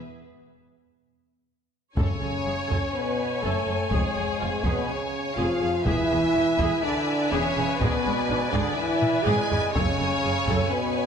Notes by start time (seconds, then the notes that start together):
1.96 F#1 F#2 C#3 C#4 A4 C#5 G#5, taiko
2.21 F#1 F#2 A4
2.45 F#1 F#2 G#4
2.69 F#1 F#2 A4, taiko
2.94 B2 B3 B4
3.42 F#1 F#2 A2 A3 A4
3.67 F#1 F#2 A4
3.90 F1 F2 G#2 G#3 G#4, taiko
4.16 F1 F2 G#4
4.40 F1 F2 F4
4.63 F1 F2 B2 B3 G#4 B4, taiko
4.88 C#4 C#5
4.93 C#3
5.36 F1 F2 F3 F4 G#4 F5
5.61 F1 F2 G#4
5.85 E1 E2 E3 E4 G#4 B4 E5 G#5, taiko
6.10 E1 E2 G#4
6.35 E1 E2 E4
6.59 E1 E2 G#4, taiko
6.84 D3 D4 D5
7.29 E1 E2 C#3 C#4 G#4 C#5
7.56 E1 E2 G#4
7.79 G#1 G#2 B2 B3 G#4 B4 D5, taiko
8.04 G#1 G#2 G#4
8.28 G#1 G#2 D4
8.52 G#1 G#2 D3 D4 G#4 D5, taiko
8.76 E3 E4 E5
9.02 taiko low-mid
9.23 G#1 G#4 G#5, taiko low-mid
9.27 G#2 G#3
9.51 G#1 G#2 G#4, taiko low
9.73 F#1 F#2 C#3 C#4 A4 C#5 G#5, taiko
9.99 F#1 F#2 A4
10.24 F#1 F#2 G#4
10.48 F#1 F#2 A4, taiko
10.70 B2 B3 B4